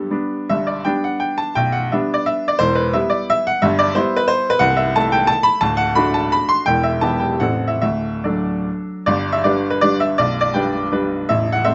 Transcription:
0.00 0.13 G2 medium
0.00 0.11 G3 soft
0.00 0.11 B3 soft
0.00 0.11 D4 soft
0.00 0.30 G4 medium
0.00 0.13 A4 medium
0.11 0.46 G3 soft
0.11 0.46 B3 soft
0.11 0.46 D4 soft
0.49 0.84 G1 medium
0.49 0.85 G2 medium
0.49 0.67 E5 medium
0.67 0.85 D5 medium
0.85 1.52 G3 medium
0.85 1.52 B3 soft
0.85 1.52 D4 medium
0.85 1.04 G5 medium
1.04 1.22 F#5 medium
1.20 1.38 G5 medium
1.38 1.55 A5 medium
1.55 1.90 B0 medium
1.55 1.90 B1 medium
1.55 1.73 G5 loud
1.72 1.90 F#5 medium
1.92 2.56 G3 medium
1.92 2.56 B3 medium
1.92 2.56 D4 medium
1.92 2.15 E5 medium
2.14 2.25 D5 medium
2.26 2.48 E5 medium
2.48 2.59 D5 medium
2.59 2.93 E1 medium
2.59 2.93 E2 medium
2.59 2.76 C5 loud
2.75 2.93 B4 medium
2.93 3.58 G3 medium
2.93 3.58 B3 medium
2.93 3.58 E4 medium
2.93 3.11 E5 medium
3.10 3.28 D5 medium
3.30 3.46 E5 loud
3.47 3.62 F#5 loud
3.62 3.94 G1 medium
3.62 3.94 G2 medium
3.62 3.77 E5 loud
3.79 3.95 D5 loud
3.95 4.58 G3 medium
3.95 4.57 B3 medium
3.95 4.58 E4 medium
3.95 4.18 C5 loud
4.16 4.28 B4 loud
4.28 4.50 C5 loud
4.50 4.61 B4 loud
4.59 4.93 C1 medium
4.59 4.93 C2 medium
4.59 4.76 F#5 loud
4.77 4.94 E5 medium
4.96 5.59 A3 medium
4.96 5.59 E4 medium
4.96 5.13 A5 loud
5.12 5.29 G5 loud
5.27 5.45 A5 loud
5.43 5.60 B5 loud
5.61 5.94 D1 medium
5.61 5.95 D2 medium
5.61 5.77 A5 loud
5.77 5.95 F#5 loud
5.95 6.62 A3 medium
5.95 6.63 D4 medium
5.95 6.63 F#4 medium
5.95 6.14 B5 loud
6.14 6.32 A5 loud
6.32 6.49 B5 loud
6.49 6.66 C6 loud
6.66 7.01 E1 medium
6.66 7.01 E2 medium
6.66 6.83 G5 loud
6.83 7.02 E5 medium
7.01 7.36 E3 medium
7.01 7.36 B3 medium
7.01 7.37 G4 medium
7.01 7.20 A5 medium
7.20 7.39 G5 medium
7.40 7.80 A0 medium
7.40 7.80 A1 medium
7.40 7.78 E3 soft
7.40 7.78 C4 soft
7.40 7.78 A4 soft
7.40 7.67 F#5 medium
7.68 7.80 E5 medium
7.82 8.24 D1 medium
7.82 8.24 D2 medium
7.82 8.24 E5 medium
8.24 9.03 F#3 soft
8.24 9.03 D4 medium
8.24 9.03 A4 medium
8.24 8.66 D5 medium
9.06 10.15 G1 medium
9.06 10.15 G2 medium
9.06 9.32 D5 loud
9.32 9.45 E5 loud
9.44 9.79 G3 medium
9.44 9.79 D4 soft
9.44 9.69 B4 medium
9.44 9.70 D5 medium
9.70 9.82 B4 medium
9.81 10.15 G3 medium
9.81 10.15 D4 medium
9.81 10.15 B4 medium
9.81 10.00 D5 loud
10.00 10.18 E5 loud
10.18 11.25 B0 medium
10.18 11.25 B1 medium
10.18 10.39 D5 loud
10.41 10.54 D5 loud
10.54 10.88 G3 medium
10.54 10.88 D4 medium
10.54 10.88 B4 medium
10.54 11.09 G5 medium
10.92 11.24 G3 medium
10.92 11.24 D4 medium
10.92 11.25 B4 medium
11.29 11.74 A0 medium
11.29 11.74 A1 medium
11.29 11.52 E5 loud
11.52 11.65 F#5 loud
11.64 11.74 A3 medium
11.64 11.74 C4 medium
11.64 11.74 C5 medium
11.64 11.74 E5 loud

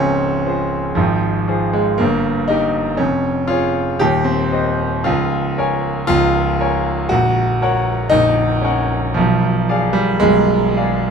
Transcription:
0.00 1.00 C#1 medium
0.00 1.00 C#2 medium
0.00 1.00 G#3 medium
0.00 1.00 C4 medium
0.00 0.71 C#4 loud
0.00 0.46 F4 medium
0.00 0.46 G#4 medium
0.00 0.47 C5 medium
0.46 0.93 F4 soft
0.46 0.93 G#4 medium
0.46 0.94 C5 medium
0.95 1.96 G#1 medium
0.95 1.97 G#2 medium
0.95 1.73 F3 medium
1.48 1.96 F4 medium
1.48 1.96 G#4 medium
1.48 1.96 C5 medium
1.73 1.99 G#3 medium
1.98 2.98 G1 medium
1.98 2.98 G2 medium
1.98 2.49 A#3 loud
2.48 2.99 D#4 loud
2.48 2.96 G4 medium
2.48 2.96 A#4 medium
2.48 2.97 D#5 medium
2.97 3.98 F1 medium
2.97 3.98 F2 medium
2.97 3.49 C#4 medium
3.48 4.00 F4 loud
3.48 3.97 G#4 medium
3.48 3.97 C#5 medium
3.99 5.04 D#1 medium
3.99 5.03 D#2 medium
3.99 4.26 G4 loud
4.24 5.05 C4 medium
4.52 5.02 G4 medium
4.52 5.02 C5 medium
4.52 5.03 D#5 medium
5.04 6.05 C#1 medium
5.04 6.05 C#2 medium
5.04 6.06 F4 loud
5.58 6.05 A#4 medium
5.58 6.05 C#5 medium
5.58 6.05 G#5 medium
6.07 7.08 C#1 medium
6.07 7.08 C#2 medium
6.07 7.10 F4 loud
6.60 7.07 A#4 medium
6.60 7.07 C#5 medium
6.60 7.07 G#5 medium
7.09 8.10 A#0 medium
7.09 8.10 A#1 medium
7.09 8.12 F#4 loud
7.62 8.09 A#4 medium
7.62 8.09 C#5 medium
7.62 8.09 F#5 medium
8.10 9.13 A#0 medium
8.10 9.13 A#1 medium
8.10 8.62 D#4 loud
8.62 8.89 C#4 medium
8.62 9.12 A#4 medium
8.62 9.12 C#5 medium
8.62 9.13 F#5 medium
9.14 10.18 B0 medium
9.14 10.18 B1 medium
9.14 9.94 F3 medium
9.69 10.17 G#4 medium
9.69 10.17 D5 medium
9.69 10.18 F5 medium
9.93 10.20 G3 loud
10.20 11.11 B0 medium
10.20 11.11 B1 medium
10.20 11.11 G#3 loud
10.76 11.11 G#4 medium
10.76 11.11 D5 medium
10.76 11.11 F5 medium

